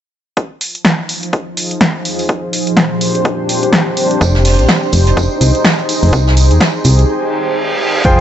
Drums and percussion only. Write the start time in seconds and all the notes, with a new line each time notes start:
0.37 kick, closed hi-hat
0.61 open hi-hat
0.75 closed hi-hat
0.85 kick, snare, closed hi-hat
1.09 open hi-hat
1.23 closed hi-hat
1.33 kick, closed hi-hat
1.57 open hi-hat
1.71 closed hi-hat
1.81 kick, snare, closed hi-hat
2.05 open hi-hat
2.19 open hi-hat
2.29 kick, closed hi-hat
2.53 open hi-hat
2.67 closed hi-hat
2.77 kick, snare, closed hi-hat
3.01 open hi-hat
3.15 closed hi-hat
3.25 kick, closed hi-hat
3.49 open hi-hat
3.63 closed hi-hat
3.73 kick, snare, closed hi-hat
3.97 open hi-hat
4.11 closed hi-hat
4.21 kick, closed hi-hat, tambourine
4.35 snare, tambourine
4.45 snare, open hi-hat, tambourine
4.59 closed hi-hat, tambourine
4.69 kick, snare, closed hi-hat, tambourine
4.83 tambourine
4.92 open hi-hat, tambourine
5.07 closed hi-hat, tambourine
5.17 kick, closed hi-hat, tambourine
5.31 tambourine
5.41 open hi-hat, tambourine
5.55 closed hi-hat, tambourine
5.65 kick, snare, closed hi-hat, tambourine
5.79 closed hi-hat, tambourine
5.89 open hi-hat, tambourine
6.03 open hi-hat, tambourine
6.13 kick, closed hi-hat, tambourine
6.27 snare, tambourine
6.37 open hi-hat, tambourine
6.51 closed hi-hat, tambourine
6.61 kick, snare, closed hi-hat, tambourine
6.75 tambourine
6.84 open hi-hat, tambourine
6.99 closed hi-hat, tambourine
8.05 kick, closed hi-hat, tambourine